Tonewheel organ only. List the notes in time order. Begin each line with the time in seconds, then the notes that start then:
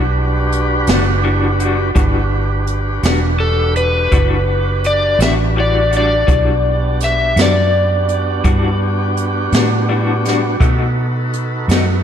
Already playing: D4 F#4 G4 B4
1.95 D4 F#4 G4 B4
6.27 B3 D4 F#4 G4
10.60 D#4 F#4 A4 B4